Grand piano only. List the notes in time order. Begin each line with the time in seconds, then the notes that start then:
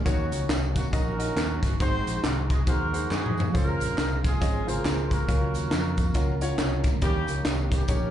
0.05 D#3 D#4 F#4 A#4 C#5
0.93 D#4 F#4 A#4 D#5
1.18 D#4 F#4 A#4 D#5
1.80 G#2 D#4 F#4 G#4 C5
2.67 D#4 F#4 G#4 C5
2.93 D#4 F#4 G#4 C5
3.54 C#3 C#4 F4 G#4 C5
4.41 C#4 F4 G#4 D#5
4.67 C#3 F4 G#4 C5
5.28 C#3 F#3 C#4 A#4 F5
6.15 C#4 F4 F#4 A#4
6.41 C#4 F4 F#4 C#5
7.02 D#3 C#4 D#4 G4 A#4
7.89 C#4 D#4 G4 C#5